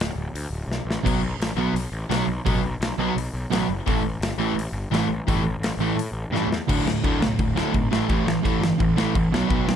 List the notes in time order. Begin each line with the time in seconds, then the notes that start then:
0.00 snare, open hi-hat
0.16 D1
0.34 D2, open hi-hat
0.50 D1
0.68 B1, snare
0.85 A1
0.91 snare
1.05 B1 B2 F#3 B3, kick, crash
1.22 B1
1.39 A1, snare, open hi-hat
1.55 B1 B2 F#3 B3
1.73 B1, open hi-hat
1.92 A1
2.10 B1 B2 F#3 B3, snare, open hi-hat
2.28 B1
2.46 A1 B2 F#3 B3, kick, open hi-hat
2.62 B1
2.80 B1, snare, open hi-hat
2.98 B1 B2 F#3 B3
3.16 B1, open hi-hat
3.34 B1
3.51 A1 B2 F#3 B3, snare, open hi-hat
3.69 F#1
3.86 A1 A2 E3 A3, kick, open hi-hat
4.03 A1
4.20 G1, snare, open hi-hat
4.38 A1 A2 E3 A3
4.55 A1
4.59 open hi-hat
4.72 G1
4.90 A1 A2 E3 A3, open hi-hat
4.95 snare
5.08 A1
5.27 G1 A2 E3 A3, kick, open hi-hat
5.42 A1
5.59 A1
5.63 snare, open hi-hat
5.77 A1 A2
5.82 E3 A3
5.96 A2, open hi-hat
6.12 A1
6.30 G2 A2 E3
6.34 A3, snare
6.47 E2
6.52 snare
6.68 D1 D2 A2 D3, kick, crash
6.83 D1 D2 A2
6.88 snare
7.04 D2 A2 D3, kick, crash
7.19 B1 D2 A2, snare
7.39 D1 D2 A2, kick, crash
7.56 D2 A2 D3, snare
7.74 B1 D2 A2, kick, crash
7.91 A1 A2 E3 A3, snare
8.09 A1 A2 E3 A3, kick, crash
8.25 A1 A2 E3, snare
8.44 A2 E3 A3, kick, crash
8.59 G1 A2
8.63 E3, snare
8.79 A1 A2 E3, kick, crash
8.96 A2 E3 A3, snare
9.15 A1 A2 E3, kick, crash
9.31 B1 B2 F#3, snare
9.35 B3
9.50 B1 B2 F#3 B3, kick, crash
9.66 B1 B2 F#3, snare